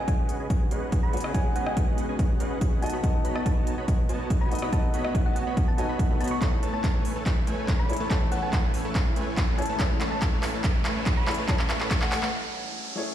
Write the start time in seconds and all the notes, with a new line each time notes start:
Already playing: C#2 C#3 G#3 B3 C#4 D#4 F#4 G#4 B4 C#5 D#5 G#5
0.08 G#5, kick, closed hi-hat
0.19 C#2 C#4 G#4 B4 D#5 F#5
0.29 closed hi-hat
0.40 C#2 C#4 G#4 B4 D#5 G#5
0.50 C#2, kick, closed hi-hat
0.71 C#2 C#4 G#4 B4 D#5 F#5, closed hi-hat
0.92 kick, closed hi-hat
1.03 C#2 C#4 G#4 B4 D#5 F#5 B5
1.12 B3 C#4 F#4 G#4 C#5, closed hi-hat
1.17 closed hi-hat
1.20 C#2 C#4 G#4 B4 D#5 G#5, cross-stick, closed hi-hat
1.33 B3 C#4 F#4 G#4 C#5 G#5, kick, closed hi-hat
1.56 C#2 C#4 G#4 B4 D#5 F#5 G#5, closed hi-hat
1.66 G#5, cross-stick
1.77 kick, closed hi-hat
1.88 C#4 G#4 B4 D#5 F#5
1.98 closed hi-hat
2.09 C#4 G#4 B4 D#5 G#5
2.19 C#2 C#4 G#4 B4 D#5 F#5, kick, closed hi-hat
2.40 C#2 C#4 G#4 B4 D#5 F#5, closed hi-hat
2.61 kick, closed hi-hat
2.72 C#2 C#4 G#4 B4 D#5 F#5
2.81 A3 B3 D#4 F#4 A4 D#5 A5, closed hi-hat
2.86 closed hi-hat
2.90 B1 B3 F#4 C#5 D#5 B5, closed hi-hat
3.02 B3 D#4 F#4 A4 D#5, kick, closed hi-hat
3.25 B1 B3 F#4 C#5 D#5 B5, closed hi-hat
3.35 A5, cross-stick
3.46 A5, kick, closed hi-hat
3.57 B1 B3 F#4 C#5 D#5 A5
3.67 closed hi-hat
3.78 B1 B3 F#4 C#5 D#5 B5
3.88 B3 F#4 C#5 D#5 G#5, kick, closed hi-hat
4.09 B1 B3 F#4 C#5 D#5 A5, closed hi-hat
4.30 kick, closed hi-hat
4.41 B1 B3 F#4 C#5 D#5 G#5 B5
4.50 B3 D#4 F#4 A4 D#5, closed hi-hat
4.55 closed hi-hat
4.59 B1 B3 F#4 C#5 D#5 B5, cross-stick, closed hi-hat
4.71 B3 D#4 F#4 A4 C#5 D#5 A5, kick, closed hi-hat
4.94 B1 B3 F#4 C#5 D#5 B5, closed hi-hat
5.05 cross-stick
5.15 kick, closed hi-hat
5.26 B3 F#4 C#5 D#5 F#5 A5
5.36 F#5, closed hi-hat
5.47 B1 B3 F#4 C#5 D#5 B5
5.57 B3 D#5, kick, closed hi-hat
5.68 A5
5.77 B3 D#4 F#4 A4 C#5 D#5 G#5 A5, closed hi-hat
5.89 B1 B3 F#4 C#5 D#5 B5
5.99 kick, closed hi-hat
6.09 B3 D#4 F#4 A4 C#5 D#5 F#5 B5
6.20 B1 B3 F#4 C#5 D#5 A5 B5, closed hi-hat
6.24 closed hi-hat
6.28 C#6, closed hi-hat
6.40 E3 A3 C#4 E4 G#4 A4 B4 C#5, kick, clap, closed hi-hat, riser
6.63 A3 A4 B4 C#5 A5, closed hi-hat
6.74 A5
6.84 A5, kick, clap, closed hi-hat
6.95 A3 A4 B4 C#5 G#5
7.05 open hi-hat
7.16 A3 A4 B4 C#5 A5
7.26 F#5, kick, clap, closed hi-hat
7.47 A3 A4 B4 C#5 G#5, closed hi-hat
7.68 kick, clap, closed hi-hat
7.79 A3 A4 B4 C#5 F#5 B5
7.89 A3 C#4 E4 G#4 C#5, closed hi-hat
7.93 closed hi-hat
7.97 A3 A4 B4 C#5 A5, closed hi-hat
8.09 A3 C#4 E4 G#4 A4 B4 C#5 G#5 A5, kick, clap, closed hi-hat
8.13 C#5
8.32 A3 A4 B4 C#5 F#5 A5, closed hi-hat
8.43 A5
8.53 kick, clap, closed hi-hat
8.64 A3 A4 B4 C#5 G#5
8.74 open hi-hat
8.85 A3 A4 B4 C#5 A5
8.95 C#5 F#5, kick, clap, closed hi-hat
9.16 A3 A4 B4 C#5 G#5, closed hi-hat
9.37 kick, clap, closed hi-hat
9.48 A3 A4 B4 C#5 F#5
9.57 A3 C#4 E4 G#4 C#5 A5, closed hi-hat
9.62 closed hi-hat
9.66 A3 A4 B4 C#5 A5, closed hi-hat
9.78 G#3 A3 C#4 E4, kick, clap, closed hi-hat
9.82 C#5
10.01 A3 A4 B4 C#5 A5, clap, closed hi-hat
10.12 A5
10.22 A5, kick, clap, closed hi-hat
10.33 A3 A4 B4 C#5 G#5
10.43 clap, open hi-hat
10.54 A3 A4 B4 C#5 A5
10.64 A3 A4 B4 C#5 F#5, kick, clap, closed hi-hat
10.85 A3 A4 B4 C#5 G#5, clap, closed hi-hat
11.06 kick, clap, closed hi-hat
11.17 A3 A4 B4 C#5 F#5 B5
11.26 A3 C#4 E4 G#4 C#5, clap, closed hi-hat
11.31 closed hi-hat
11.34 A3 A4 B4 C#5 A5, closed hi-hat
11.47 A3 C#4 E4 G#4 C#5 A5, kick, clap, closed hi-hat
11.59 clap
11.70 A3 A4 B4 C#5 A5, clap, closed hi-hat
11.80 clap
11.91 kick, clap, closed hi-hat
12.02 A3 A4 B4 C#5 F#5 G#5, clap
12.12 F#5, clap, open hi-hat
12.23 A3 A4 B4 C#5 A5, clap
12.96 A3 C#4 E4 G#4 C#5